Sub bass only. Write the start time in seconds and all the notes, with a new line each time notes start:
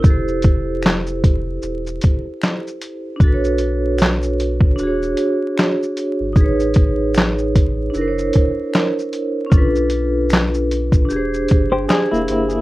0.04 F1
1.63 E1
3.21 B1
4.78 E1
6.20 G#1
6.36 A1
7.94 F#1
9.52 B1
11.10 E1
11.51 G1
12.12 E1
12.29 G1